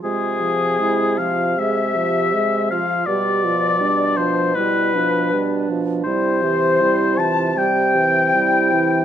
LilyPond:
<<
  \new Staff \with { instrumentName = "Flute" } { \time 4/4 \key c \major \tempo 4 = 79 aes'4. f''8 e''4. f''8 | d''4. c''8 b'4. r8 | c''4. a''8 g''2 | }
  \new Staff \with { instrumentName = "Oboe" } { \time 4/4 \key c \major aes'4. f''8 e''4. f''8 | d''4. c''8 b'4. r8 | c''4. a''8 g''2 | }
  \new Staff \with { instrumentName = "Clarinet" } { \time 4/4 \key c \major f'8 r8 e'8 f'8 aes'8 g'8 aes'8 f'8 | g'8 f'8 d'4 e'8 d'4. | e'8 g'8 e'8 f'8 g'8 r8 e'4 | }
  \new Staff \with { instrumentName = "French horn" } { \clef bass \time 4/4 \key c \major aes8 f8 aes8 f8 aes8 f8 aes8 f8 | g8 f8 g8 f8 g8 f8 g8 f8 | g8 e8 g8 e8 g8 e8 g8 e8 | }
  \new Staff \with { instrumentName = "Bassoon" } { \clef bass \time 4/4 \key c \major c2.~ c8 r8 | b,1 | c1 | }
>>